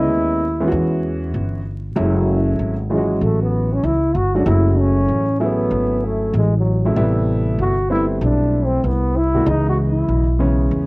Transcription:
Already playing: G#3 E4
0.00 B3 C#4 D#5
0.09 D#2
0.60 E3 G#3 B3 C#4 F4
0.68 E2 F#4
1.34 G1
1.96 F#1 F#3 G#3 A3 C#4 E4
2.59 G#1
2.90 E3 F#3 G#3 C#4 F4
2.97 F#4
3.21 A1 A3
3.42 B3
3.73 C#4
3.83 C#2 E4
4.15 G1 F#4
4.34 F#3 G#3 A3 C#4 D4 F#4
4.46 F#1 F#3 G#3 A3 C#4 E4 F#4
4.78 C#4
5.08 A1
5.40 F#3 A3 B3 C#4 E4 G#4
5.71 G#1
6.04 A3
6.33 A1 G#3
6.57 F#3
6.85 F#3 G#3 A3 C#4 E4
6.96 A1 C3 G3 A3 B3 E4
7.59 G1 F#4
7.90 G3 A3 B3 C4 E4
8.21 B1 D4
8.65 C4
8.84 C2 B3
9.17 E4
9.35 C3 G3 A3 B3 F#4
9.46 C#2 C#3 E3 G#3 B3 D#4 D#5
9.69 F#4
9.90 E4
10.09 B1
10.39 C#3 E3 G#3 B3 C#4
10.71 E2

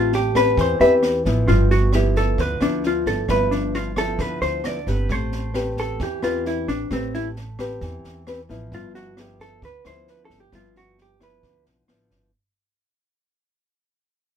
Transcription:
Already playing: A1 A3 C4 F4 G4 B4
0.12 G4, snare
0.35 C4 G4 B4, kick, cross-stick, snare
0.57 E2 E3 C5, kick, snare
0.80 E2 C4 G4 B4 E5, snare
1.03 cross-stick, snare
1.25 A1 F3 B3 E4, kick, snare
1.48 G1 G2 F4, kick, snare
1.71 F#4, snare
1.93 F3 B3 E4 G4, cross-stick, snare
2.16 A4, kick, snare
2.38 D2 D3 B4, kick, snare
2.61 D2 F3 B3 D4 E4, cross-stick, snare
2.83 F4, snare
3.06 G1 A4, kick, snare
3.29 G1 G2 F3 B3 E4 B4, kick, cross-stick, snare
3.51 D4, snare
3.74 F4, snare
3.96 F3 B3 E4 A4, kick, cross-stick, snare
4.19 D2 D3 B4, kick, snare
4.41 D2 C5, snare
4.64 F3 B3 E4 D5, cross-stick, snare
4.87 G1 C4 G4 B4, kick, snare
5.09 A1 A3 C5, kick, snare
5.32 snare
5.54 C4 G4 B4, cross-stick, snare
5.77 A4, kick, snare
5.99 E2 E3 G4, kick, snare
6.22 E2 C4 F4 G4 B4, cross-stick, snare
6.45 E4, snare
6.68 A1 D4, kick, snare
6.91 A1 A3 C4 G4 B4, kick, cross-stick, snare
7.14 E4, snare
7.36 snare
7.59 C4 G4 B4, kick, cross-stick, snare
7.81 E2 E3, kick, snare
8.04 E2, snare
8.27 C4 G4 B4, cross-stick, snare
8.49 A1 F3 B3 E4, kick, snare
8.72 G1 G2 F4, kick, snare
8.95 F#4, snare
9.17 F3 B3 E4 G4, cross-stick, snare
9.40 A4, kick, snare
9.62 D2 D3 B4, kick, snare
9.85 D2 F3 B3 E4 C5, cross-stick, snare
10.07 B4, snare
10.25 A4
10.30 G1, kick, snare
10.40 G4
10.52 G1 G2 F3 B3 E4 F4, kick, cross-stick, snare
10.75 F#4, snare
10.98 G4, snare
11.20 F3 B3 E4 B4, kick, cross-stick, snare
11.43 D2 D3, kick, snare
11.66 B1, snare
11.88 A1 F3 B3 E4, cross-stick, snare
12.11 G1, kick, snare

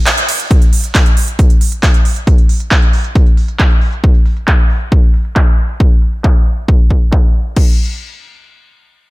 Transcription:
0.06 clap, closed hi-hat
0.18 closed hi-hat
0.29 open hi-hat, ride
0.40 closed hi-hat
0.51 kick, closed hi-hat
0.62 closed hi-hat
0.73 open hi-hat
0.84 closed hi-hat
0.95 kick, clap, closed hi-hat
1.06 closed hi-hat
1.17 open hi-hat
1.28 closed hi-hat
1.39 kick, closed hi-hat
1.50 closed hi-hat
1.61 open hi-hat
1.72 closed hi-hat
1.83 kick, clap, closed hi-hat
1.94 closed hi-hat
2.05 open hi-hat
2.16 closed hi-hat
2.27 kick, closed hi-hat
2.38 closed hi-hat
2.49 open hi-hat
2.60 closed hi-hat
2.71 kick, clap, closed hi-hat
2.82 closed hi-hat
2.93 open hi-hat
3.04 closed hi-hat
3.15 kick, closed hi-hat
3.26 closed hi-hat
3.37 open hi-hat
3.48 closed hi-hat
3.59 kick, clap, closed hi-hat
3.70 closed hi-hat
3.82 open hi-hat
3.93 closed hi-hat
4.04 kick, closed hi-hat
4.15 closed hi-hat
4.26 open hi-hat
4.37 closed hi-hat
4.48 kick, clap
4.59 closed hi-hat
4.70 open hi-hat
4.81 closed hi-hat
4.92 kick
5.03 closed hi-hat
5.14 open hi-hat
5.25 closed hi-hat
5.36 kick, clap
5.58 open hi-hat
5.69 closed hi-hat
5.80 kick
5.91 closed hi-hat
6.02 open hi-hat
6.13 closed hi-hat
6.24 kick, clap
6.46 open hi-hat
6.57 closed hi-hat
6.68 kick
6.90 kick
7.02 closed hi-hat
7.12 kick, clap
7.34 open hi-hat
7.45 closed hi-hat
7.56 kick, crash

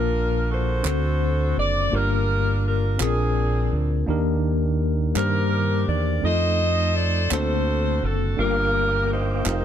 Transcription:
Already playing: A#1 A#2 A#3 D4 F4 A#4 A5
0.51 F#4 A4 C5
0.83 D2 D3 C4 D4 F#4 A4 C5, clap
1.57 F#1 D5
1.91 G1 G2 A#3 D4 F4 G4 A#4
1.95 A#4
2.66 A#4
2.98 A#1 A#2 C4 C#4 D4 F4 G#4 A#4, clap
3.06 D4
3.73 D2
4.06 D#2 D#3 A#3 D4 D#4 G4 A#4
5.14 G2 D#3 A#3 D4 G4 A#4 C5, clap
5.88 E2 D5
6.22 F2 A3 C4 D#4 F4 A4 C5 D#5
6.26 A4
6.97 D5
7.30 D2 D3 A#3 C4 D4 F#4 A4 C5, clap
8.03 F#1 A4
8.37 G1 G2 A#3 D4 F4 G4 A#4 F5 G5 D6
8.41 A#4
9.12 D#4 G4 C5
9.45 F1 C4 D#4 F4 G4 A#4, clap

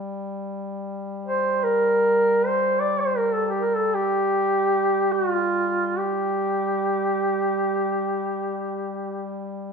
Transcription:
Already playing: G3
1.26 C5
1.63 A#4
2.46 C5
2.80 D5
3.00 C5
3.17 A#4
3.34 A4
3.46 G4 A4
3.61 A#4
3.76 A4
3.94 G4
5.12 F#4
5.31 F4
5.99 G4

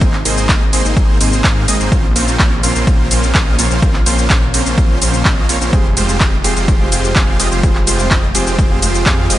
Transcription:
Already playing: C3 D#3 G#3 D#4
0.01 G#1 A#3 C4 D#4 G#4 C5, kick, ride, shaker
0.13 clap
0.25 G#1 A#3 C4 D#4 G#4 C5, open hi-hat, ride, shaker
0.38 shaker
0.49 G#1 A#3 C4 D#4 G#4 D#5, kick, clap, ride, shaker
0.73 G#1 A#3 C4 D#4 G#4 C5, open hi-hat, ride, shaker
0.85 G#1 A#3 C4 D#4 G#4 C5, shaker
0.97 G#1 A#3 C4 D#4 G#4 C5, kick, ride, shaker
1.21 G#1 A#3 C4 D#4 G#4 C5, open hi-hat, ride, shaker
1.33 shaker
1.44 G#2 A#3 C4 D#4 G#4 F5, kick, clap, ride, shaker
1.68 G#1 A#3 C4 D#4 G#4 D#5, open hi-hat, ride, shaker
1.80 G#1 A#3 C4 D#4 G#4 C5, shaker
1.92 A#1 C#3 F3 A#3 C4 C#4 F4 C5, kick, ride, shaker
2.15 A#1 A#3 C4 C#4 F4 C5, open hi-hat, ride, shaker
2.28 shaker
2.39 A#1 A#3 C4 C#4 F4 C#5, kick, clap, ride, shaker
2.63 A#1 A#3 C4 C#4 F4 C5, open hi-hat, ride, shaker
2.75 A#1 A#3 C4 C#4 F4 C5, shaker
2.87 A#1 A#3 C4 C#4 F4 C5, kick, ride, shaker
3.11 A#1 A#3 C4 C#4 F4 C5, open hi-hat, ride, shaker
3.23 shaker
3.35 A#1 A#3 C4 C#4 F4 D#5, kick, clap, ride, shaker
3.59 A#1 A#3 C4 C#4 F4 C#5, open hi-hat, ride, shaker
3.71 A#1 A#3 C4 C#4 F4 C5, shaker
3.82 A#1 A#3 C4 C#4 F4 C5, kick, ride, shaker
3.94 clap
4.06 A#1 A#3 C4 C#4 F4 C5, open hi-hat, ride, shaker
4.18 shaker
4.30 A#1 A#3 C4 C#4 F4 C#5, kick, clap, ride, shaker
4.54 A#1 A#3 C4 C#4 F4 C5, open hi-hat, ride, shaker
4.66 A#1 A#3 C4 C#4 F4 C5, shaker
4.78 A#1 A#3 C4 C#4 F4 C5, kick, ride, shaker
5.02 A#1 A#3 C4 C#4 F4 C5, open hi-hat, ride, shaker
5.14 shaker
5.25 A#1 A#3 C4 C#4 F4 D#5, kick, clap, ride, shaker
5.49 A#1 A#3 C4 C#4 F4 C#5, open hi-hat, ride, shaker
5.61 A#1 A#3 C4 C#4 F4 C5, shaker
5.72 F1 C3 G3 G#3 C4 F4 G4 G#4 C5, kick, ride, shaker
5.97 F1 G#3 C4 F4 G4 C5, open hi-hat, ride, shaker
6.08 G3 C4 F4 G#4, shaker
6.20 F1 G#3 C4 F4 G4 D#5, kick, clap, ride, shaker
6.44 F1 G#3 C4 F4 G4 G#4 C5, open hi-hat, ride, shaker
6.56 F1 G#3 C4 F4 G4 C5, shaker
6.68 F1 G#3 C4 F4 G4 C5, kick, ride, shaker
6.79 C4 F4 G4 G#4
6.92 F1 G#3 C4 F4 G4 C5, open hi-hat, ride, shaker
7.04 shaker
7.15 F1 G#3 C4 F4 G4 G#4 F5, kick, clap, ride, shaker
7.40 F1 G#3 C4 F4 G4 D#5, open hi-hat, ride, shaker
7.51 F1 G#3 C4 F4 G4 C5, shaker
7.63 F1 G3 G#3 C4 F4 G4 G#4 C5, kick, ride, shaker
7.75 clap
7.87 F1 G#3 C4 F4 G4 C5, open hi-hat, ride, shaker
7.98 G3 C4 F4 G#4, shaker
8.11 F1 G#3 C4 F4 G4 D#5, kick, clap, ride, shaker
8.34 F1 G#3 C4 F4 G4 G#4 C5, open hi-hat, ride, shaker
8.47 F1 G#3 C4 F4 G4 C5, shaker
8.59 F1 G#3 C4 F4 G4 C5, kick, ride, shaker
8.70 C4 F4 G4 G#4
8.82 F1 G#3 C4 F4 G4 C5, open hi-hat, ride, shaker
8.95 shaker
9.05 F2 G#3 C4 F4 G4 G#4 F5, kick, clap, ride, shaker
9.30 F1 G#3 C4 F4 G4 D#5, open hi-hat, ride, shaker

